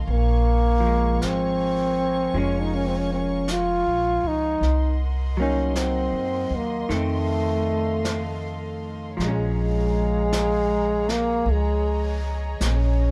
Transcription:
Already playing: string section F5
0.05 upright bass A#1, string section A#4 G#5 C#6, brush sweep
0.11 trombone A#3
0.80 hollow-body jazz guitar F3
0.87 hollow-body jazz guitar G#3
1.21 upright bass G#1, trombone C4, brush sweep, snare, hi-hat pedal
2.34 upright bass F1, hollow-body jazz guitar F3 G#3 C#4, brush sweep
2.38 trombone C#4
2.63 trombone D#4
2.74 trombone C#4
2.87 trombone C4
2.98 trombone C#4
3.13 trombone C#4
3.48 trombone F4, brush sweep, snare, hi-hat pedal
3.86 upright bass A#1
4.23 upright bass C#2
4.27 trombone D#4
4.60 upright bass C2, string section A#4 D#5 F#5 C6, brush sweep, snare
5.37 hollow-body jazz guitar F#3 A#3, trombone C#4
5.42 hollow-body jazz guitar D#4
5.75 trombone C4, brush sweep, snare, hi-hat pedal
6.13 upright bass F#2
6.50 upright bass D#2
6.56 trombone A#3
6.89 upright bass F2, hollow-body jazz guitar D#3 A3, string section A4 F5, brush sweep, snare
6.94 trombone A3, hollow-body jazz guitar C4
8.05 brush sweep, snare, hi-hat pedal
9.16 upright bass A#1, hollow-body jazz guitar F3, string section G#4 C#5 F5 A#5
9.20 hollow-body jazz guitar G#3, trombone G#3, brush sweep, snare
9.28 hollow-body jazz guitar C#4
10.33 brush sweep, snare, hi-hat pedal
11.09 trombone A#3, snare
11.46 upright bass C#2, string section D#5, brush sweep
11.53 trombone G#3
12.60 upright bass A#1, brush sweep, snare, hi-hat pedal
12.66 trombone C#4

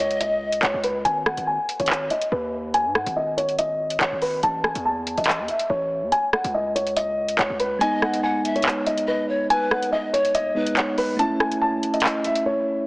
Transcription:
Already playing: 808-style bass C#2
0.00 grand piano C#5, pan flute D#5, closed hi-hat
0.11 closed hi-hat
0.21 grand piano D#5, closed hi-hat
0.52 closed hi-hat
0.63 808-style bass C#2, grand piano C#5, clap, closed hi-hat
0.74 808-style bass C#2
0.84 grand piano B4, closed hi-hat
1.05 808-style bass G#1, grand piano G#5, closed hi-hat
1.26 grand piano F#5, cross-stick
1.37 808-style bass G#1, closed hi-hat
1.47 grand piano G#5
1.69 closed hi-hat
1.80 808-style bass G#1, grand piano C#5, closed hi-hat
1.86 clap, closed hi-hat
1.93 closed hi-hat
2.10 grand piano D#5, closed hi-hat
2.21 closed hi-hat
2.32 808-style bass D#2, grand piano B4
2.74 grand piano G#5, closed hi-hat
2.85 808-style bass G#2
2.95 grand piano F#5, cross-stick
3.06 808-style bass G#1, closed hi-hat
3.16 grand piano D#5
3.37 grand piano C#5, closed hi-hat
3.49 closed hi-hat
3.59 grand piano D#5, closed hi-hat
3.90 closed hi-hat
4.01 808-style bass G#1, grand piano C#5, clap, closed hi-hat
4.12 808-style bass G#1
4.22 grand piano B4, open hi-hat
4.43 808-style bass A1, grand piano A5, closed hi-hat
4.64 grand piano G#5, cross-stick
4.75 808-style bass E2, closed hi-hat
4.85 grand piano A5
5.07 closed hi-hat
5.18 808-style bass A1, grand piano D#5, closed hi-hat
5.24 clap, closed hi-hat
5.31 closed hi-hat
5.39 808-style bass E2
5.48 grand piano E5, closed hi-hat
5.59 closed hi-hat
5.70 808-style bass A1, grand piano C#5
6.02 808-style bass E2
6.12 grand piano G#5, closed hi-hat
6.33 grand piano F#5, cross-stick
6.44 808-style bass C#2, closed hi-hat
6.54 grand piano D#5
6.75 grand piano C#5, closed hi-hat
6.87 closed hi-hat
6.97 grand piano D#5, closed hi-hat
7.28 closed hi-hat
7.39 808-style bass C#2, grand piano C#5, clap, closed hi-hat
7.50 808-style bass C#2
7.60 grand piano B4, closed hi-hat
7.79 synth keys G#3 B3, pan flute D#5, grand piano G#5, closed hi-hat
7.83 synth keys D#4
8.02 grand piano F#5, cross-stick
8.14 closed hi-hat
8.23 pan flute F#5, grand piano G#5
8.45 pan flute E5, closed hi-hat
8.56 grand piano C#5, closed hi-hat
8.62 clap, closed hi-hat
8.69 closed hi-hat
8.87 grand piano D#5, closed hi-hat
8.98 closed hi-hat
9.08 grand piano B4, pan flute D#5
9.29 pan flute C#5
9.50 pan flute B4, grand piano G#5, closed hi-hat
9.71 grand piano F#5, cross-stick
9.83 closed hi-hat
9.92 grand piano D#5, pan flute D#5
10.13 grand piano C#5, pan flute C#5, closed hi-hat
10.25 closed hi-hat
10.35 grand piano D#5, closed hi-hat
10.55 synth keys G#3 B3 D#4, pan flute B4
10.67 closed hi-hat
10.77 grand piano C#5, clap, closed hi-hat
10.98 grand piano B4, open hi-hat
11.17 synth keys A3 C#4, grand piano A5, closed hi-hat
11.21 synth keys E4
11.40 grand piano G#5, cross-stick
11.52 closed hi-hat
11.62 grand piano A5
11.83 closed hi-hat
11.94 grand piano D#5, closed hi-hat
12.00 clap, closed hi-hat
12.07 closed hi-hat
12.24 grand piano E5, closed hi-hat
12.36 closed hi-hat
12.46 grand piano C#5

